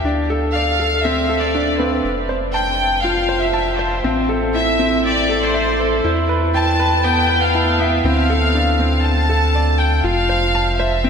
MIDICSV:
0, 0, Header, 1, 4, 480
1, 0, Start_track
1, 0, Tempo, 500000
1, 37, Time_signature, 4, 2, 24, 8
1, 10653, End_track
2, 0, Start_track
2, 0, Title_t, "Violin section"
2, 0, Program_c, 0, 48
2, 519, Note_on_c, 0, 77, 107
2, 965, Note_off_c, 0, 77, 0
2, 995, Note_on_c, 0, 76, 102
2, 1350, Note_on_c, 0, 74, 88
2, 1357, Note_off_c, 0, 76, 0
2, 1714, Note_off_c, 0, 74, 0
2, 1714, Note_on_c, 0, 71, 75
2, 1956, Note_off_c, 0, 71, 0
2, 2436, Note_on_c, 0, 79, 108
2, 2883, Note_off_c, 0, 79, 0
2, 2904, Note_on_c, 0, 77, 97
2, 3266, Note_on_c, 0, 76, 95
2, 3271, Note_off_c, 0, 77, 0
2, 3628, Note_on_c, 0, 72, 77
2, 3632, Note_off_c, 0, 76, 0
2, 3873, Note_off_c, 0, 72, 0
2, 4360, Note_on_c, 0, 76, 106
2, 4806, Note_off_c, 0, 76, 0
2, 4857, Note_on_c, 0, 74, 108
2, 5207, Note_off_c, 0, 74, 0
2, 5213, Note_on_c, 0, 72, 97
2, 5565, Note_off_c, 0, 72, 0
2, 5576, Note_on_c, 0, 69, 80
2, 5807, Note_off_c, 0, 69, 0
2, 6287, Note_on_c, 0, 81, 109
2, 6729, Note_off_c, 0, 81, 0
2, 6760, Note_on_c, 0, 79, 109
2, 7119, Note_off_c, 0, 79, 0
2, 7122, Note_on_c, 0, 77, 97
2, 7480, Note_off_c, 0, 77, 0
2, 7482, Note_on_c, 0, 76, 80
2, 7717, Note_on_c, 0, 77, 108
2, 7720, Note_off_c, 0, 76, 0
2, 8639, Note_off_c, 0, 77, 0
2, 8666, Note_on_c, 0, 81, 107
2, 9387, Note_on_c, 0, 79, 99
2, 9392, Note_off_c, 0, 81, 0
2, 9633, Note_off_c, 0, 79, 0
2, 9634, Note_on_c, 0, 77, 113
2, 10356, Note_off_c, 0, 77, 0
2, 10356, Note_on_c, 0, 76, 92
2, 10653, Note_off_c, 0, 76, 0
2, 10653, End_track
3, 0, Start_track
3, 0, Title_t, "Grand piano"
3, 0, Program_c, 1, 0
3, 0, Control_c, 1, 64, 127
3, 46, Note_on_c, 1, 62, 74
3, 50, Control_c, 1, 64, 0
3, 199, Control_c, 1, 64, 127
3, 270, Note_off_c, 1, 62, 0
3, 288, Note_on_c, 1, 69, 74
3, 419, Note_off_c, 1, 69, 0
3, 530, Note_on_c, 1, 74, 68
3, 752, Note_off_c, 1, 74, 0
3, 765, Note_on_c, 1, 69, 68
3, 989, Note_off_c, 1, 69, 0
3, 1006, Note_on_c, 1, 60, 81
3, 1230, Note_off_c, 1, 60, 0
3, 1241, Note_on_c, 1, 69, 69
3, 1468, Note_off_c, 1, 69, 0
3, 1483, Note_on_c, 1, 62, 74
3, 1708, Note_off_c, 1, 62, 0
3, 1723, Note_on_c, 1, 60, 68
3, 1949, Note_off_c, 1, 60, 0
3, 1971, Control_c, 1, 64, 0
3, 2160, Control_c, 1, 64, 127
3, 2199, Note_on_c, 1, 72, 68
3, 2426, Note_off_c, 1, 72, 0
3, 2438, Note_on_c, 1, 81, 71
3, 2666, Note_off_c, 1, 81, 0
3, 2920, Note_on_c, 1, 65, 78
3, 3147, Note_off_c, 1, 65, 0
3, 3155, Note_on_c, 1, 72, 71
3, 3293, Note_off_c, 1, 72, 0
3, 3393, Note_on_c, 1, 81, 72
3, 3624, Note_off_c, 1, 81, 0
3, 3637, Note_on_c, 1, 72, 72
3, 3866, Note_off_c, 1, 72, 0
3, 3881, Note_on_c, 1, 60, 83
3, 3890, Control_c, 1, 64, 0
3, 4040, Control_c, 1, 64, 127
3, 4107, Note_off_c, 1, 60, 0
3, 4120, Note_on_c, 1, 69, 73
3, 4347, Note_off_c, 1, 69, 0
3, 4361, Note_on_c, 1, 64, 70
3, 4587, Note_off_c, 1, 64, 0
3, 4602, Note_on_c, 1, 60, 76
3, 4828, Note_off_c, 1, 60, 0
3, 5081, Note_on_c, 1, 69, 71
3, 5307, Note_off_c, 1, 69, 0
3, 5321, Note_on_c, 1, 76, 75
3, 5548, Note_off_c, 1, 76, 0
3, 5801, Note_on_c, 1, 64, 87
3, 5811, Control_c, 1, 64, 0
3, 5983, Control_c, 1, 64, 127
3, 6027, Note_off_c, 1, 64, 0
3, 6040, Note_on_c, 1, 71, 76
3, 6175, Note_off_c, 1, 71, 0
3, 6281, Note_on_c, 1, 79, 78
3, 6507, Note_off_c, 1, 79, 0
3, 6523, Note_on_c, 1, 71, 75
3, 6748, Note_off_c, 1, 71, 0
3, 6761, Note_on_c, 1, 59, 84
3, 6987, Note_off_c, 1, 59, 0
3, 7001, Note_on_c, 1, 71, 72
3, 7227, Note_off_c, 1, 71, 0
3, 7241, Note_on_c, 1, 64, 75
3, 7468, Note_off_c, 1, 64, 0
3, 7486, Note_on_c, 1, 59, 78
3, 7710, Note_off_c, 1, 59, 0
3, 7729, Control_c, 1, 64, 0
3, 7729, Note_on_c, 1, 60, 84
3, 7888, Control_c, 1, 64, 127
3, 7952, Note_off_c, 1, 60, 0
3, 7968, Note_on_c, 1, 69, 77
3, 8191, Note_off_c, 1, 69, 0
3, 8205, Note_on_c, 1, 62, 73
3, 8429, Note_off_c, 1, 62, 0
3, 8444, Note_on_c, 1, 60, 73
3, 8669, Note_off_c, 1, 60, 0
3, 8922, Note_on_c, 1, 69, 71
3, 9148, Note_off_c, 1, 69, 0
3, 9166, Note_on_c, 1, 74, 70
3, 9390, Note_off_c, 1, 74, 0
3, 9638, Note_on_c, 1, 65, 81
3, 9650, Control_c, 1, 64, 0
3, 9803, Control_c, 1, 64, 127
3, 9866, Note_off_c, 1, 65, 0
3, 9881, Note_on_c, 1, 72, 72
3, 10016, Note_off_c, 1, 72, 0
3, 10125, Note_on_c, 1, 81, 75
3, 10350, Note_off_c, 1, 81, 0
3, 10363, Note_on_c, 1, 72, 75
3, 10588, Note_off_c, 1, 72, 0
3, 10601, Note_on_c, 1, 60, 84
3, 10653, Note_off_c, 1, 60, 0
3, 10653, End_track
4, 0, Start_track
4, 0, Title_t, "Analog synth bass"
4, 0, Program_c, 2, 38
4, 36, Note_on_c, 2, 38, 72
4, 1933, Note_off_c, 2, 38, 0
4, 1956, Note_on_c, 2, 29, 79
4, 3853, Note_off_c, 2, 29, 0
4, 3873, Note_on_c, 2, 33, 76
4, 5771, Note_off_c, 2, 33, 0
4, 5798, Note_on_c, 2, 40, 76
4, 7694, Note_off_c, 2, 40, 0
4, 7719, Note_on_c, 2, 38, 80
4, 9614, Note_off_c, 2, 38, 0
4, 9633, Note_on_c, 2, 29, 78
4, 10653, Note_off_c, 2, 29, 0
4, 10653, End_track
0, 0, End_of_file